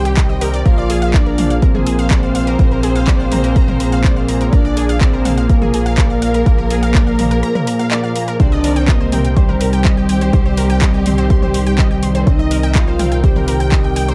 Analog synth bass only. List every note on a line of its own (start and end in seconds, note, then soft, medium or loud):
0.00 0.63 C2 medium
0.66 2.57 A#1 medium
2.59 4.50 A#1 medium
4.53 6.44 A#1 loud
6.46 7.43 A#1 loud
8.40 10.31 C2 medium
10.33 12.24 C2 medium
12.27 14.14 C2 medium